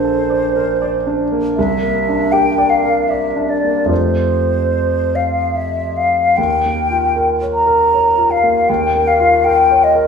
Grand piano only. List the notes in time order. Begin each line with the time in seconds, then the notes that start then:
Already playing: A#1 A#3 D4
0.04 A4
0.30 D5
0.56 A#4
0.82 D5
1.07 D4
1.32 A#3
1.58 C2
1.83 A#3
2.09 D4
2.33 G4
2.58 D5
2.84 A#4
3.10 D5
3.36 D4
3.63 A#3
3.86 F2 A3 F4 G4 C5
6.38 D#2
6.66 A#3
6.91 F4
7.16 A#4
7.41 C#5
7.67 A#4
7.93 C#5
8.17 F4
8.43 A#3
8.69 D#2
8.95 A#3
9.20 F4
9.46 A#4
9.70 C#5
9.95 A#4